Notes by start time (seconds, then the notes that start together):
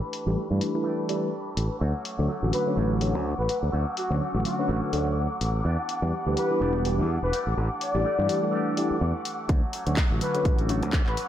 Already playing: E3 A3 D4 G4 B4 B5
0.13 open hi-hat
0.26 A1 E3 G3 A3 D4 G4
0.50 G2 E3 G3 A3 D4 G4
0.61 open hi-hat
0.74 E3 G3 A3 D4 B4
0.84 E3 A3 D4
0.89 G4
1.09 E3 G3 A3 D4 G4, open hi-hat
1.57 A1, open hi-hat
1.80 D2 F#3 A3 C#4 F#4 F#5 D6
2.05 open hi-hat
2.18 D2 D3 F#3 A3 C#4 F#4
2.28 F#3 A3 C#4 F#4
2.42 A1 D3 F#3 A3 C#4 F#4
2.53 B4, open hi-hat
2.66 D3 F#3 A3 C#4 B4
2.76 A1 F#3 A3 C#4
2.81 F#4
3.01 D3 F#3 A3 C#4 F#4, open hi-hat
3.15 D2
3.39 A1 B4
3.49 muted fingered electric bass stroke, open hi-hat
3.63 D2
3.72 D2 F#3 A3 C#4 F#4
3.97 F#4, open hi-hat
4.10 D2 D3 F#3 A3 C#4 F#4
4.20 F#3 A3 C#4 F#4
4.34 A1 D3 F#3 A3 C#4 F#4
4.45 F#4, open hi-hat
4.58 D3 F#3 A3 C#4 B4
4.68 A1 F#3 A3 C#4
4.73 F#4
4.93 D2 D3 F#3 A3 C#4 F#4, open hi-hat
5.41 A1, open hi-hat
5.63 E2 E3 B3 D4
5.69 G4
5.89 open hi-hat
6.02 E2 E3 G3 B3 D4 G4
6.26 D2 E3 G3 B3 D4 G4
6.37 B4, open hi-hat
6.50 E3 G3 B3 D4 B4
6.60 E1 E3 B3 D4 G4
6.85 E3 G3 B3 D4 G4, open hi-hat
6.99 E2
7.23 E1 B4
7.32 E3 A3 D4 G4, muted fingered electric bass stroke, open hi-hat
7.47 A1
7.57 A1
7.81 D5, open hi-hat
7.95 A1 E3 G3 A3 D4 G4
8.04 E3 A3 D4 G4
8.18 G2 E3 G3 A3 D4 G4
8.29 open hi-hat
8.43 E3 G3 A3 D4 B4
8.51 E3 A3 D4
8.57 G4
8.77 E3 G3 A3 D4 G4, open hi-hat
8.91 muted fingered electric bass stroke
9.01 E2
9.25 open hi-hat
9.48 D2 F#3 A3 C#4 F#4 F#5 D6, kick, closed hi-hat
9.72 F#3 A3 C#4 F#4, open hi-hat
9.86 D2 D3 F#3 A3 C#4 F#4, closed hi-hat
9.96 F#3 A3 C#4 F#4, kick, clap, closed hi-hat
10.10 A1 D3 F#3 A3 C#4 F#4
10.20 F#3 A3 C#4 F#4 B4, open hi-hat
10.33 D3 F#3 A3 C#4 F#4 B4, closed hi-hat
10.45 A1, kick, closed hi-hat
10.57 A3 C#4 F#4, closed hi-hat
10.68 D3 F#3 A3 C#4 F#4, open hi-hat
10.81 D2 A3 C#4 F#4, closed hi-hat
10.92 F#3 A3 C#4 F#4, kick, clap, closed hi-hat
11.06 A1 B4, clap
11.17 muted fingered electric bass stroke, open hi-hat